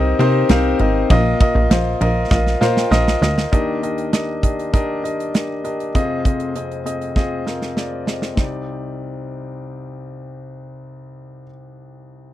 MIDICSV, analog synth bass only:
0, 0, Header, 1, 2, 480
1, 0, Start_track
1, 0, Key_signature, -3, "minor"
1, 0, Tempo, 606061
1, 873, Time_signature, 4, 2, 24, 8
1, 9769, End_track
2, 0, Start_track
2, 0, Title_t, "Analog synth bass"
2, 0, Program_c, 0, 38
2, 0, Note_on_c, 0, 36, 112
2, 109, Note_off_c, 0, 36, 0
2, 152, Note_on_c, 0, 48, 91
2, 349, Note_off_c, 0, 48, 0
2, 392, Note_on_c, 0, 36, 91
2, 589, Note_off_c, 0, 36, 0
2, 631, Note_on_c, 0, 32, 94
2, 828, Note_off_c, 0, 32, 0
2, 872, Note_on_c, 0, 34, 121
2, 1069, Note_off_c, 0, 34, 0
2, 1228, Note_on_c, 0, 34, 103
2, 1328, Note_off_c, 0, 34, 0
2, 1351, Note_on_c, 0, 34, 109
2, 1548, Note_off_c, 0, 34, 0
2, 1591, Note_on_c, 0, 34, 101
2, 1788, Note_off_c, 0, 34, 0
2, 1830, Note_on_c, 0, 34, 108
2, 2027, Note_off_c, 0, 34, 0
2, 2068, Note_on_c, 0, 46, 89
2, 2266, Note_off_c, 0, 46, 0
2, 2308, Note_on_c, 0, 34, 99
2, 2506, Note_off_c, 0, 34, 0
2, 2547, Note_on_c, 0, 38, 98
2, 2745, Note_off_c, 0, 38, 0
2, 9769, End_track
0, 0, End_of_file